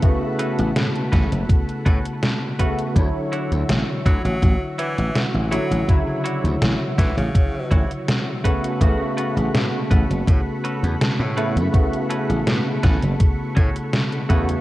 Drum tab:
HH |x-xxxxxxxxxxx-xx|x-xxx-xxx-xxx-xx|x-xxx-xxx-xxx-xx|x-xxx-xxx-xxx-xx|
SD |----o-o-----o---|----o-------o---|----o-o-----o---|----o-------o---|
BD |o-----o-o-o---o-|o-----o-o-------|o-----o-o-o---o-|o-----o-o-------|

HH |xxxxx-xxx-xxxxxx|
SD |----o-o-----o---|
BD |o-----o-o-o---o-|